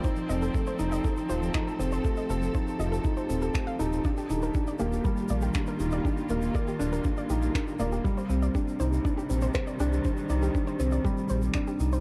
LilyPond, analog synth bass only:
\new Staff \with { instrumentName = "Analog synth bass" } { \clef bass \time 4/4 \key ees \lydian \tempo 4 = 120 r8 f,,8 r8 f,,8 r8 ees,,8 r8 f,,8 | r8 f,,8 r8 f,,8 r8 ees,,8 r8 ees,,8 | r8 ees,,8 r8 ees,,8 r8 bes,,8 r8 ees,,8 | r8 ees,,8 r8 ees,,8 r8 bes,,8 r8 ees,,8 |
r8 c,8 r8 c,8 r8 bes,,8 r8 c,8 | r8 c,8 r8 c,8 r8 bes,,8 r8 c,8 | }